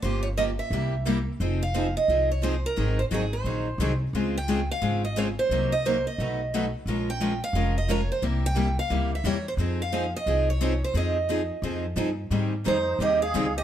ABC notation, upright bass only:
X:1
M:4/4
L:1/8
Q:"Swing" 1/4=176
K:Fm
V:1 name="Upright bass" clef=bass
G,,,4 C,,4 | F,,,4 C,,4 | A,,,2 A,,,2 B,,,2 C,,2 | D,,4 A,,,4 |
C,,4 =B,,,4 | B,,,4 F,,,4 | C,,4 D,,2 =E,,2 | F,,4 C,,4 |
F,,4 F,,2 G,,2 | A,,2 F,,2 E,,2 D,,2 |]